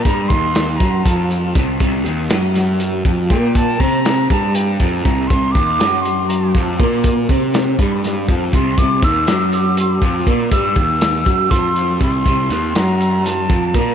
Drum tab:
HH |xxxxxxx|xxxxxxx|xxxxxxx|xxxxxxx|
SD |--o---o|--oo---|--o--o-|--o--o-|
BD |oo-oo-o|o----oo|oo-o-oo|oo---oo|

HH |xxxxxxx|xxxxxxx|xxxxxxx|xxxxxxx|
SD |--o-o--|--o----|--o-o--|-oo-o--|
BD |oo-o-oo|oo---oo|oo-oo-o|o----oo|